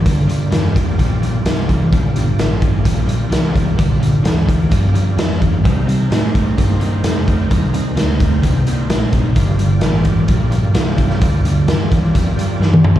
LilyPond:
<<
  \new Staff \with { instrumentName = "Tonewheel organ" } { \time 4/4 \key g \minor \tempo 4 = 129 <bes f' g' d''>1 | <bes f' g' d''>1~ | <bes f' g' d''>1 | <ees' g' bes' c''>1~ |
<ees' g' bes' c''>1 | <bes f' g' d''>1~ | <bes f' g' d''>1 | }
  \new Staff \with { instrumentName = "Distorted electric guitar" } { \clef bass \time 4/4 \key g \minor <g, d>8 <g, d>8 <g, e>8 <g, e>8 <g, f>8 <g, f>8 <g, e>8 <g, e>8 | <g, d>8 <g, d>8 <g, e>8 <g, e>8 <g, f>8 <g, f>8 <g, e>8 <g, e>8 | <g, d>8 <g, d>8 <g, e>8 <g, e>8 <g, f>8 <g, f>8 <g, e>8 <g, e>8 | <c g>8 <c g>8 <c a>8 <c a>8 <c bes>8 <c bes>8 <c a>8 <c a>8 |
<c g>8 <c g>8 <c a>8 <c a>8 <c bes>8 <c bes>8 <c a>8 <c a>8 | <g, d>8 <g, d>8 <g, e>8 <g, e>8 <g, f>8 <g, f>8 <g, e>8 <g, e>8 | <g, d>8 <g, d>8 <g, e>8 <g, e>8 <g, f>8 <g, f>8 <g, e>8 <g, e>8 | }
  \new Staff \with { instrumentName = "Fingered electric bass" } { \clef bass \time 4/4 \key g \minor g,4 f,4 bes,,4 c,4 | bes,,4 a,,4 bes,,4 c,4 | bes,,4 d,4 g,4 f,4 | c4 a,4 g,4 f,4 |
ees,4 d,4 c,4 bes,,4 | g,,4 a,,4 bes,,4 c,4 | d,4 ees,4 f,8 r8 g,4 | }
  \new DrumStaff \with { instrumentName = "Drums" } \drummode { \time 4/4 <hh bd>8 hh8 <hh sn>8 <hh bd>8 <hh bd>8 hh8 <hh sn>8 <hh bd>8 | <hh bd>8 hh8 <hh sn>8 <hh bd>8 <hh bd>8 hh8 <hh sn>8 <hh bd>8 | <hh bd>8 hh8 <hh sn>8 <hh bd>8 <hh bd>8 hh8 <hh sn>8 <hh bd>8 | <hh bd>8 hh8 <hh sn>8 <hh bd>8 <hh bd>8 hh8 <hh sn>8 <hh bd>8 |
<hh bd>8 hh8 <hh sn>8 <hh bd>8 <hh bd>8 hh8 <hh sn>8 <hh bd>8 | <hh bd>8 hh8 <hh sn>8 <hh bd>8 <hh bd>8 hh8 <hh sn>8 <hh bd>16 sn16 | <hh bd>8 hh8 <hh sn>8 <hh bd>8 <hh bd>8 hh8 sn16 tommh16 toml16 tomfh16 | }
>>